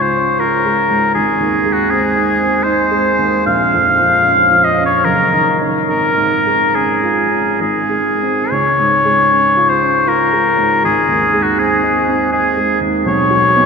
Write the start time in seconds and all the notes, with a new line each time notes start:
Already playing: C#2 G#2 G#3 C#4 F4
0.02 C5
0.17 C#4
0.39 F4 A#4
0.65 G#3
0.89 G#2
1.15 G#1 G#4
1.40 D#2
1.65 G#3
1.72 F#4
1.90 C4 G#4
2.15 D#4
2.40 C4
2.63 D#4 C5
2.91 G#3
3.19 D#2
3.46 A#1 F5
3.74 F2
3.99 F3
4.24 C#4
4.50 F3
4.64 D#5
4.78 C#4
4.85 C#5
5.05 F#1 A#4
5.33 D#3
5.61 C#4 D#4
5.89 G#1 A#4
6.18 G#2
6.46 G#3
6.75 C#4 G#4
7.03 F4
7.31 C#4
7.60 G#1 G#4
7.90 G#3
8.22 C4 D#4
8.51 C#2 C#5
8.79 G#2
9.05 G#3
9.30 C#4
9.57 F4
9.70 C5
9.82 C#4
10.07 F4 A#4
10.32 G#3
10.58 G#2
10.84 G#1 G#4
11.08 D#2
11.34 G#3
11.42 F#4
11.58 C4 G#4
11.83 D#4
12.08 C4
12.33 G#4
12.57 G#3
12.81 D#2
13.05 B1 C#5
13.30 F#3
13.56 B3 D#4